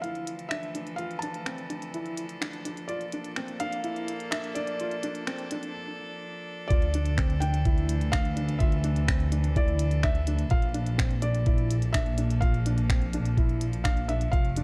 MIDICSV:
0, 0, Header, 1, 6, 480
1, 0, Start_track
1, 0, Key_signature, -1, "minor"
1, 0, Tempo, 476190
1, 997, Time_signature, 4, 2, 24, 8
1, 14754, End_track
2, 0, Start_track
2, 0, Title_t, "Felt piano"
2, 0, Program_c, 0, 0
2, 16, Note_on_c, 0, 77, 81
2, 491, Note_on_c, 0, 76, 92
2, 521, Note_off_c, 0, 77, 0
2, 969, Note_on_c, 0, 77, 86
2, 999, Note_off_c, 0, 76, 0
2, 1199, Note_on_c, 0, 81, 97
2, 1231, Note_off_c, 0, 77, 0
2, 1898, Note_off_c, 0, 81, 0
2, 2900, Note_on_c, 0, 74, 84
2, 3588, Note_off_c, 0, 74, 0
2, 3629, Note_on_c, 0, 77, 116
2, 4344, Note_on_c, 0, 76, 100
2, 4375, Note_off_c, 0, 77, 0
2, 4573, Note_off_c, 0, 76, 0
2, 4585, Note_on_c, 0, 74, 94
2, 5751, Note_off_c, 0, 74, 0
2, 6730, Note_on_c, 0, 74, 93
2, 7463, Note_on_c, 0, 79, 102
2, 7486, Note_off_c, 0, 74, 0
2, 8183, Note_on_c, 0, 77, 108
2, 8212, Note_off_c, 0, 79, 0
2, 8655, Note_on_c, 0, 76, 87
2, 8685, Note_off_c, 0, 77, 0
2, 9346, Note_off_c, 0, 76, 0
2, 9644, Note_on_c, 0, 74, 91
2, 10117, Note_on_c, 0, 76, 104
2, 10135, Note_off_c, 0, 74, 0
2, 10592, Note_on_c, 0, 77, 101
2, 10611, Note_off_c, 0, 76, 0
2, 11041, Note_off_c, 0, 77, 0
2, 11312, Note_on_c, 0, 74, 87
2, 12021, Note_on_c, 0, 76, 95
2, 12056, Note_off_c, 0, 74, 0
2, 12505, Note_on_c, 0, 77, 91
2, 12524, Note_off_c, 0, 76, 0
2, 13936, Note_off_c, 0, 77, 0
2, 13951, Note_on_c, 0, 77, 95
2, 14197, Note_on_c, 0, 76, 88
2, 14201, Note_off_c, 0, 77, 0
2, 14430, Note_on_c, 0, 77, 98
2, 14444, Note_off_c, 0, 76, 0
2, 14754, Note_off_c, 0, 77, 0
2, 14754, End_track
3, 0, Start_track
3, 0, Title_t, "Felt piano"
3, 0, Program_c, 1, 0
3, 36, Note_on_c, 1, 64, 75
3, 301, Note_off_c, 1, 64, 0
3, 515, Note_on_c, 1, 62, 75
3, 648, Note_off_c, 1, 62, 0
3, 754, Note_on_c, 1, 62, 68
3, 887, Note_off_c, 1, 62, 0
3, 993, Note_on_c, 1, 65, 80
3, 1126, Note_off_c, 1, 65, 0
3, 1239, Note_on_c, 1, 62, 73
3, 1371, Note_off_c, 1, 62, 0
3, 1471, Note_on_c, 1, 60, 71
3, 1605, Note_off_c, 1, 60, 0
3, 1711, Note_on_c, 1, 62, 72
3, 1845, Note_off_c, 1, 62, 0
3, 1957, Note_on_c, 1, 64, 85
3, 2221, Note_off_c, 1, 64, 0
3, 2431, Note_on_c, 1, 62, 79
3, 2565, Note_off_c, 1, 62, 0
3, 2672, Note_on_c, 1, 62, 71
3, 2805, Note_off_c, 1, 62, 0
3, 2915, Note_on_c, 1, 65, 80
3, 3048, Note_off_c, 1, 65, 0
3, 3158, Note_on_c, 1, 62, 79
3, 3290, Note_off_c, 1, 62, 0
3, 3399, Note_on_c, 1, 60, 78
3, 3530, Note_off_c, 1, 60, 0
3, 3637, Note_on_c, 1, 62, 74
3, 3769, Note_off_c, 1, 62, 0
3, 3870, Note_on_c, 1, 64, 86
3, 4136, Note_off_c, 1, 64, 0
3, 4351, Note_on_c, 1, 62, 78
3, 4485, Note_off_c, 1, 62, 0
3, 4595, Note_on_c, 1, 62, 76
3, 4728, Note_off_c, 1, 62, 0
3, 4843, Note_on_c, 1, 65, 86
3, 4973, Note_off_c, 1, 65, 0
3, 5075, Note_on_c, 1, 62, 84
3, 5208, Note_off_c, 1, 62, 0
3, 5315, Note_on_c, 1, 60, 81
3, 5448, Note_off_c, 1, 60, 0
3, 5561, Note_on_c, 1, 62, 79
3, 5692, Note_off_c, 1, 62, 0
3, 6760, Note_on_c, 1, 65, 84
3, 6891, Note_off_c, 1, 65, 0
3, 7004, Note_on_c, 1, 62, 83
3, 7134, Note_off_c, 1, 62, 0
3, 7235, Note_on_c, 1, 60, 83
3, 7368, Note_off_c, 1, 60, 0
3, 7472, Note_on_c, 1, 62, 83
3, 7606, Note_off_c, 1, 62, 0
3, 7715, Note_on_c, 1, 64, 92
3, 7979, Note_off_c, 1, 64, 0
3, 8193, Note_on_c, 1, 62, 84
3, 8326, Note_off_c, 1, 62, 0
3, 8431, Note_on_c, 1, 62, 78
3, 8565, Note_off_c, 1, 62, 0
3, 8674, Note_on_c, 1, 65, 92
3, 8807, Note_off_c, 1, 65, 0
3, 8911, Note_on_c, 1, 62, 88
3, 9045, Note_off_c, 1, 62, 0
3, 9149, Note_on_c, 1, 60, 82
3, 9283, Note_off_c, 1, 60, 0
3, 9394, Note_on_c, 1, 62, 76
3, 9527, Note_off_c, 1, 62, 0
3, 9636, Note_on_c, 1, 64, 91
3, 9901, Note_off_c, 1, 64, 0
3, 10118, Note_on_c, 1, 62, 79
3, 10250, Note_off_c, 1, 62, 0
3, 10356, Note_on_c, 1, 62, 82
3, 10489, Note_off_c, 1, 62, 0
3, 10593, Note_on_c, 1, 65, 85
3, 10726, Note_off_c, 1, 65, 0
3, 10828, Note_on_c, 1, 62, 87
3, 10962, Note_off_c, 1, 62, 0
3, 11067, Note_on_c, 1, 60, 83
3, 11202, Note_off_c, 1, 60, 0
3, 11311, Note_on_c, 1, 62, 77
3, 11445, Note_off_c, 1, 62, 0
3, 11554, Note_on_c, 1, 64, 93
3, 11819, Note_off_c, 1, 64, 0
3, 12040, Note_on_c, 1, 62, 84
3, 12171, Note_off_c, 1, 62, 0
3, 12279, Note_on_c, 1, 62, 79
3, 12411, Note_off_c, 1, 62, 0
3, 12522, Note_on_c, 1, 65, 88
3, 12653, Note_off_c, 1, 65, 0
3, 12764, Note_on_c, 1, 62, 84
3, 12894, Note_off_c, 1, 62, 0
3, 12998, Note_on_c, 1, 60, 80
3, 13130, Note_off_c, 1, 60, 0
3, 13246, Note_on_c, 1, 62, 83
3, 13376, Note_off_c, 1, 62, 0
3, 13484, Note_on_c, 1, 64, 91
3, 13746, Note_off_c, 1, 64, 0
3, 13965, Note_on_c, 1, 62, 84
3, 14095, Note_off_c, 1, 62, 0
3, 14206, Note_on_c, 1, 62, 82
3, 14335, Note_off_c, 1, 62, 0
3, 14447, Note_on_c, 1, 65, 86
3, 14577, Note_off_c, 1, 65, 0
3, 14688, Note_on_c, 1, 62, 86
3, 14754, Note_off_c, 1, 62, 0
3, 14754, End_track
4, 0, Start_track
4, 0, Title_t, "String quartet"
4, 0, Program_c, 2, 48
4, 0, Note_on_c, 2, 52, 73
4, 0, Note_on_c, 2, 53, 64
4, 0, Note_on_c, 2, 60, 67
4, 0, Note_on_c, 2, 62, 66
4, 0, Note_on_c, 2, 69, 80
4, 158, Note_off_c, 2, 60, 0
4, 2994, Note_on_c, 2, 58, 77
4, 3954, Note_off_c, 2, 52, 0
4, 6761, Note_off_c, 2, 58, 0
4, 7193, Note_on_c, 2, 52, 87
4, 10596, Note_off_c, 2, 53, 0
4, 10617, Note_on_c, 2, 53, 86
4, 10907, Note_on_c, 2, 58, 83
4, 12132, Note_off_c, 2, 52, 0
4, 14447, Note_off_c, 2, 58, 0
4, 14496, Note_on_c, 2, 57, 91
4, 14754, Note_off_c, 2, 53, 0
4, 14754, Note_off_c, 2, 57, 0
4, 14754, Note_off_c, 2, 62, 0
4, 14754, Note_off_c, 2, 69, 0
4, 14754, End_track
5, 0, Start_track
5, 0, Title_t, "Double bass section"
5, 0, Program_c, 3, 48
5, 0, Note_on_c, 3, 38, 75
5, 2892, Note_off_c, 3, 38, 0
5, 2911, Note_on_c, 3, 34, 88
5, 5794, Note_off_c, 3, 34, 0
5, 6760, Note_on_c, 3, 38, 96
5, 10575, Note_off_c, 3, 38, 0
5, 10596, Note_on_c, 3, 34, 101
5, 14413, Note_off_c, 3, 34, 0
5, 14445, Note_on_c, 3, 29, 91
5, 14754, Note_off_c, 3, 29, 0
5, 14754, End_track
6, 0, Start_track
6, 0, Title_t, "Drums"
6, 37, Note_on_c, 9, 42, 37
6, 138, Note_off_c, 9, 42, 0
6, 154, Note_on_c, 9, 42, 18
6, 255, Note_off_c, 9, 42, 0
6, 275, Note_on_c, 9, 42, 68
6, 376, Note_off_c, 9, 42, 0
6, 393, Note_on_c, 9, 42, 28
6, 494, Note_off_c, 9, 42, 0
6, 513, Note_on_c, 9, 26, 87
6, 513, Note_on_c, 9, 42, 36
6, 614, Note_off_c, 9, 26, 0
6, 614, Note_off_c, 9, 42, 0
6, 635, Note_on_c, 9, 42, 18
6, 736, Note_off_c, 9, 42, 0
6, 754, Note_on_c, 9, 42, 66
6, 855, Note_off_c, 9, 42, 0
6, 874, Note_on_c, 9, 42, 28
6, 975, Note_off_c, 9, 42, 0
6, 992, Note_on_c, 9, 42, 37
6, 1093, Note_off_c, 9, 42, 0
6, 1116, Note_on_c, 9, 42, 19
6, 1217, Note_off_c, 9, 42, 0
6, 1232, Note_on_c, 9, 42, 69
6, 1333, Note_off_c, 9, 42, 0
6, 1354, Note_on_c, 9, 42, 30
6, 1455, Note_off_c, 9, 42, 0
6, 1474, Note_on_c, 9, 26, 94
6, 1474, Note_on_c, 9, 42, 43
6, 1575, Note_off_c, 9, 26, 0
6, 1575, Note_off_c, 9, 42, 0
6, 1595, Note_on_c, 9, 42, 17
6, 1695, Note_off_c, 9, 42, 0
6, 1715, Note_on_c, 9, 42, 65
6, 1816, Note_off_c, 9, 42, 0
6, 1836, Note_on_c, 9, 42, 28
6, 1937, Note_off_c, 9, 42, 0
6, 1956, Note_on_c, 9, 42, 41
6, 2057, Note_off_c, 9, 42, 0
6, 2073, Note_on_c, 9, 42, 20
6, 2174, Note_off_c, 9, 42, 0
6, 2192, Note_on_c, 9, 42, 70
6, 2293, Note_off_c, 9, 42, 0
6, 2310, Note_on_c, 9, 42, 32
6, 2411, Note_off_c, 9, 42, 0
6, 2436, Note_on_c, 9, 26, 92
6, 2436, Note_on_c, 9, 42, 41
6, 2537, Note_off_c, 9, 26, 0
6, 2537, Note_off_c, 9, 42, 0
6, 2554, Note_on_c, 9, 42, 21
6, 2655, Note_off_c, 9, 42, 0
6, 2675, Note_on_c, 9, 42, 67
6, 2775, Note_off_c, 9, 42, 0
6, 2795, Note_on_c, 9, 42, 30
6, 2896, Note_off_c, 9, 42, 0
6, 2911, Note_on_c, 9, 42, 40
6, 3011, Note_off_c, 9, 42, 0
6, 3033, Note_on_c, 9, 42, 21
6, 3133, Note_off_c, 9, 42, 0
6, 3149, Note_on_c, 9, 42, 74
6, 3250, Note_off_c, 9, 42, 0
6, 3271, Note_on_c, 9, 42, 32
6, 3372, Note_off_c, 9, 42, 0
6, 3391, Note_on_c, 9, 26, 93
6, 3391, Note_on_c, 9, 42, 45
6, 3492, Note_off_c, 9, 26, 0
6, 3492, Note_off_c, 9, 42, 0
6, 3510, Note_on_c, 9, 42, 19
6, 3611, Note_off_c, 9, 42, 0
6, 3628, Note_on_c, 9, 42, 72
6, 3729, Note_off_c, 9, 42, 0
6, 3755, Note_on_c, 9, 42, 31
6, 3856, Note_off_c, 9, 42, 0
6, 3870, Note_on_c, 9, 42, 41
6, 3971, Note_off_c, 9, 42, 0
6, 3995, Note_on_c, 9, 42, 20
6, 4095, Note_off_c, 9, 42, 0
6, 4115, Note_on_c, 9, 42, 74
6, 4216, Note_off_c, 9, 42, 0
6, 4235, Note_on_c, 9, 42, 32
6, 4336, Note_off_c, 9, 42, 0
6, 4355, Note_on_c, 9, 26, 99
6, 4355, Note_on_c, 9, 42, 43
6, 4455, Note_off_c, 9, 26, 0
6, 4455, Note_off_c, 9, 42, 0
6, 4473, Note_on_c, 9, 42, 20
6, 4574, Note_off_c, 9, 42, 0
6, 4592, Note_on_c, 9, 42, 70
6, 4692, Note_off_c, 9, 42, 0
6, 4711, Note_on_c, 9, 42, 31
6, 4812, Note_off_c, 9, 42, 0
6, 4835, Note_on_c, 9, 42, 44
6, 4936, Note_off_c, 9, 42, 0
6, 4953, Note_on_c, 9, 42, 22
6, 5054, Note_off_c, 9, 42, 0
6, 5072, Note_on_c, 9, 42, 75
6, 5173, Note_off_c, 9, 42, 0
6, 5191, Note_on_c, 9, 42, 32
6, 5292, Note_off_c, 9, 42, 0
6, 5315, Note_on_c, 9, 26, 90
6, 5315, Note_on_c, 9, 42, 47
6, 5415, Note_off_c, 9, 26, 0
6, 5415, Note_off_c, 9, 42, 0
6, 5428, Note_on_c, 9, 42, 21
6, 5529, Note_off_c, 9, 42, 0
6, 5552, Note_on_c, 9, 42, 78
6, 5653, Note_off_c, 9, 42, 0
6, 5674, Note_on_c, 9, 42, 30
6, 5774, Note_off_c, 9, 42, 0
6, 6759, Note_on_c, 9, 36, 112
6, 6759, Note_on_c, 9, 42, 43
6, 6860, Note_off_c, 9, 36, 0
6, 6860, Note_off_c, 9, 42, 0
6, 6876, Note_on_c, 9, 42, 21
6, 6976, Note_off_c, 9, 42, 0
6, 6994, Note_on_c, 9, 42, 74
6, 7095, Note_off_c, 9, 42, 0
6, 7112, Note_on_c, 9, 42, 30
6, 7213, Note_off_c, 9, 42, 0
6, 7235, Note_on_c, 9, 26, 105
6, 7235, Note_on_c, 9, 42, 43
6, 7238, Note_on_c, 9, 36, 107
6, 7336, Note_off_c, 9, 26, 0
6, 7336, Note_off_c, 9, 42, 0
6, 7339, Note_off_c, 9, 36, 0
6, 7357, Note_on_c, 9, 42, 20
6, 7458, Note_off_c, 9, 42, 0
6, 7477, Note_on_c, 9, 42, 72
6, 7578, Note_off_c, 9, 42, 0
6, 7599, Note_on_c, 9, 42, 30
6, 7699, Note_off_c, 9, 42, 0
6, 7715, Note_on_c, 9, 42, 42
6, 7717, Note_on_c, 9, 36, 101
6, 7816, Note_off_c, 9, 42, 0
6, 7818, Note_off_c, 9, 36, 0
6, 7839, Note_on_c, 9, 42, 20
6, 7940, Note_off_c, 9, 42, 0
6, 7955, Note_on_c, 9, 42, 74
6, 8055, Note_off_c, 9, 42, 0
6, 8077, Note_on_c, 9, 42, 31
6, 8178, Note_off_c, 9, 42, 0
6, 8196, Note_on_c, 9, 26, 97
6, 8196, Note_on_c, 9, 42, 42
6, 8197, Note_on_c, 9, 36, 107
6, 8297, Note_off_c, 9, 26, 0
6, 8297, Note_off_c, 9, 42, 0
6, 8298, Note_off_c, 9, 36, 0
6, 8318, Note_on_c, 9, 42, 21
6, 8419, Note_off_c, 9, 42, 0
6, 8436, Note_on_c, 9, 42, 69
6, 8537, Note_off_c, 9, 42, 0
6, 8554, Note_on_c, 9, 42, 32
6, 8655, Note_off_c, 9, 42, 0
6, 8673, Note_on_c, 9, 42, 46
6, 8677, Note_on_c, 9, 36, 113
6, 8773, Note_off_c, 9, 42, 0
6, 8778, Note_off_c, 9, 36, 0
6, 8792, Note_on_c, 9, 42, 22
6, 8893, Note_off_c, 9, 42, 0
6, 8910, Note_on_c, 9, 42, 81
6, 9011, Note_off_c, 9, 42, 0
6, 9034, Note_on_c, 9, 42, 32
6, 9135, Note_off_c, 9, 42, 0
6, 9157, Note_on_c, 9, 26, 109
6, 9157, Note_on_c, 9, 42, 44
6, 9158, Note_on_c, 9, 36, 107
6, 9258, Note_off_c, 9, 26, 0
6, 9258, Note_off_c, 9, 42, 0
6, 9259, Note_off_c, 9, 36, 0
6, 9275, Note_on_c, 9, 42, 21
6, 9376, Note_off_c, 9, 42, 0
6, 9395, Note_on_c, 9, 42, 76
6, 9496, Note_off_c, 9, 42, 0
6, 9516, Note_on_c, 9, 42, 33
6, 9617, Note_off_c, 9, 42, 0
6, 9638, Note_on_c, 9, 36, 100
6, 9638, Note_on_c, 9, 42, 44
6, 9739, Note_off_c, 9, 36, 0
6, 9739, Note_off_c, 9, 42, 0
6, 9758, Note_on_c, 9, 42, 20
6, 9858, Note_off_c, 9, 42, 0
6, 9871, Note_on_c, 9, 42, 74
6, 9972, Note_off_c, 9, 42, 0
6, 9992, Note_on_c, 9, 42, 33
6, 10093, Note_off_c, 9, 42, 0
6, 10113, Note_on_c, 9, 26, 100
6, 10113, Note_on_c, 9, 42, 41
6, 10118, Note_on_c, 9, 36, 101
6, 10214, Note_off_c, 9, 26, 0
6, 10214, Note_off_c, 9, 42, 0
6, 10218, Note_off_c, 9, 36, 0
6, 10232, Note_on_c, 9, 42, 21
6, 10333, Note_off_c, 9, 42, 0
6, 10353, Note_on_c, 9, 42, 75
6, 10453, Note_off_c, 9, 42, 0
6, 10469, Note_on_c, 9, 42, 32
6, 10570, Note_off_c, 9, 42, 0
6, 10586, Note_on_c, 9, 42, 46
6, 10597, Note_on_c, 9, 36, 117
6, 10687, Note_off_c, 9, 42, 0
6, 10698, Note_off_c, 9, 36, 0
6, 10708, Note_on_c, 9, 42, 24
6, 10809, Note_off_c, 9, 42, 0
6, 10830, Note_on_c, 9, 42, 81
6, 10931, Note_off_c, 9, 42, 0
6, 10952, Note_on_c, 9, 42, 34
6, 11053, Note_off_c, 9, 42, 0
6, 11077, Note_on_c, 9, 26, 105
6, 11077, Note_on_c, 9, 42, 46
6, 11078, Note_on_c, 9, 36, 102
6, 11178, Note_off_c, 9, 26, 0
6, 11178, Note_off_c, 9, 42, 0
6, 11179, Note_off_c, 9, 36, 0
6, 11195, Note_on_c, 9, 42, 20
6, 11296, Note_off_c, 9, 42, 0
6, 11311, Note_on_c, 9, 42, 77
6, 11412, Note_off_c, 9, 42, 0
6, 11436, Note_on_c, 9, 42, 31
6, 11537, Note_off_c, 9, 42, 0
6, 11553, Note_on_c, 9, 42, 43
6, 11558, Note_on_c, 9, 36, 113
6, 11654, Note_off_c, 9, 42, 0
6, 11659, Note_off_c, 9, 36, 0
6, 11673, Note_on_c, 9, 42, 22
6, 11773, Note_off_c, 9, 42, 0
6, 11799, Note_on_c, 9, 42, 73
6, 11900, Note_off_c, 9, 42, 0
6, 11916, Note_on_c, 9, 42, 33
6, 12017, Note_off_c, 9, 42, 0
6, 12038, Note_on_c, 9, 26, 99
6, 12038, Note_on_c, 9, 36, 112
6, 12038, Note_on_c, 9, 42, 44
6, 12139, Note_off_c, 9, 26, 0
6, 12139, Note_off_c, 9, 36, 0
6, 12139, Note_off_c, 9, 42, 0
6, 12158, Note_on_c, 9, 42, 21
6, 12258, Note_off_c, 9, 42, 0
6, 12275, Note_on_c, 9, 42, 77
6, 12376, Note_off_c, 9, 42, 0
6, 12403, Note_on_c, 9, 42, 33
6, 12504, Note_off_c, 9, 42, 0
6, 12518, Note_on_c, 9, 36, 110
6, 12520, Note_on_c, 9, 42, 43
6, 12618, Note_off_c, 9, 36, 0
6, 12621, Note_off_c, 9, 42, 0
6, 12643, Note_on_c, 9, 42, 22
6, 12743, Note_off_c, 9, 42, 0
6, 12760, Note_on_c, 9, 42, 83
6, 12861, Note_off_c, 9, 42, 0
6, 12880, Note_on_c, 9, 42, 30
6, 12980, Note_off_c, 9, 42, 0
6, 12999, Note_on_c, 9, 36, 112
6, 13000, Note_on_c, 9, 26, 104
6, 13000, Note_on_c, 9, 42, 47
6, 13100, Note_off_c, 9, 36, 0
6, 13101, Note_off_c, 9, 26, 0
6, 13101, Note_off_c, 9, 42, 0
6, 13120, Note_on_c, 9, 42, 21
6, 13221, Note_off_c, 9, 42, 0
6, 13239, Note_on_c, 9, 42, 72
6, 13340, Note_off_c, 9, 42, 0
6, 13361, Note_on_c, 9, 42, 31
6, 13462, Note_off_c, 9, 42, 0
6, 13480, Note_on_c, 9, 36, 107
6, 13484, Note_on_c, 9, 42, 44
6, 13581, Note_off_c, 9, 36, 0
6, 13584, Note_off_c, 9, 42, 0
6, 13601, Note_on_c, 9, 42, 21
6, 13702, Note_off_c, 9, 42, 0
6, 13720, Note_on_c, 9, 42, 72
6, 13821, Note_off_c, 9, 42, 0
6, 13842, Note_on_c, 9, 42, 33
6, 13943, Note_off_c, 9, 42, 0
6, 13961, Note_on_c, 9, 26, 90
6, 13961, Note_on_c, 9, 36, 105
6, 13961, Note_on_c, 9, 42, 43
6, 14062, Note_off_c, 9, 26, 0
6, 14062, Note_off_c, 9, 36, 0
6, 14062, Note_off_c, 9, 42, 0
6, 14080, Note_on_c, 9, 42, 20
6, 14181, Note_off_c, 9, 42, 0
6, 14202, Note_on_c, 9, 42, 72
6, 14303, Note_off_c, 9, 42, 0
6, 14324, Note_on_c, 9, 42, 33
6, 14425, Note_off_c, 9, 42, 0
6, 14443, Note_on_c, 9, 36, 108
6, 14445, Note_on_c, 9, 42, 44
6, 14544, Note_off_c, 9, 36, 0
6, 14546, Note_off_c, 9, 42, 0
6, 14563, Note_on_c, 9, 42, 22
6, 14664, Note_off_c, 9, 42, 0
6, 14682, Note_on_c, 9, 42, 75
6, 14754, Note_off_c, 9, 42, 0
6, 14754, End_track
0, 0, End_of_file